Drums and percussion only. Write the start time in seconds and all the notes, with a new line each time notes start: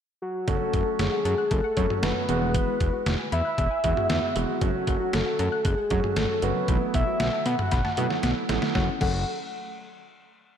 0.48 kick, closed hi-hat
0.73 kick, closed hi-hat
0.99 snare, closed hi-hat
1.25 closed hi-hat
1.51 kick, closed hi-hat
1.77 kick, closed hi-hat
1.90 mid tom
2.03 snare, closed hi-hat
2.29 closed hi-hat
2.55 kick, closed hi-hat
2.80 kick, closed hi-hat
3.06 snare, closed hi-hat
3.32 closed hi-hat
3.58 kick, closed hi-hat
3.84 kick, closed hi-hat
3.97 mid tom
4.10 snare, closed hi-hat
4.36 closed hi-hat
4.61 kick, closed hi-hat
4.87 kick, closed hi-hat
5.13 snare, closed hi-hat
5.39 closed hi-hat
5.65 kick, closed hi-hat
5.90 kick, closed hi-hat
6.04 mid tom
6.16 snare, closed hi-hat
6.42 closed hi-hat
6.68 kick, closed hi-hat
6.94 kick, closed hi-hat
7.20 snare, closed hi-hat
7.46 closed hi-hat
7.59 mid tom
7.71 kick, snare, closed hi-hat
7.85 snare
7.97 closed hi-hat
8.10 snare
8.23 snare, closed hi-hat
8.49 snare, closed hi-hat
8.62 snare
8.75 kick, snare
9.01 kick, crash